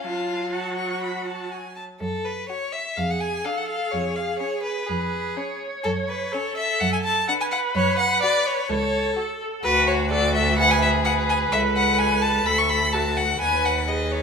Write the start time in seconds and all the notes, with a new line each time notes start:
0.03 F#3 F4 F5 A5
0.53 F#4 F#5 A5
0.77 C#6
1.02 B5
1.27 A5
1.52 G#5
1.76 A5
2.01 F#2 A4
2.25 B4
2.49 F#4 C#5
2.72 E5
2.97 F2 G#4 F5
3.10 F#5
3.20 G#5
3.44 D4 A4 F5
3.57 F#5
3.68 F5
3.91 F2 G#4 C#5
4.15 F5
4.39 C#4 C#5
4.63 B4
4.86 F2 G#4 B4
5.37 C#4 C#5
5.83 F#2 A4
6.08 B4
6.32 C#4 A4 C#5
6.57 E5
6.80 F#2 F#5
6.93 G#5
7.04 A5
7.27 D4 B4 F#5
7.41 G#5
7.51 F#5
7.75 F#2 C#5
7.98 F#5
8.22 F#4 D5
8.46 C#5
8.69 C#2 A4 C#5
9.17 F#4 A4
9.63 D2 F#4 B4
9.87 C#5
10.11 F#4 A4 D5
10.35 E5
10.58 G#4 B4 F#5
10.71 G#5
10.82 E5
11.05 B4 F#5
11.29 G#5
11.52 C#2 A4 E5
11.76 F#5
11.98 G#5
12.21 A5
12.45 D2 A4 B5
12.58 C#6
12.69 B5
12.92 F#4 A4 A5
13.17 F#5
13.41 D#2 B4 G#5
13.65 F#5
13.88 G#4 B4 D#5
14.11 C#5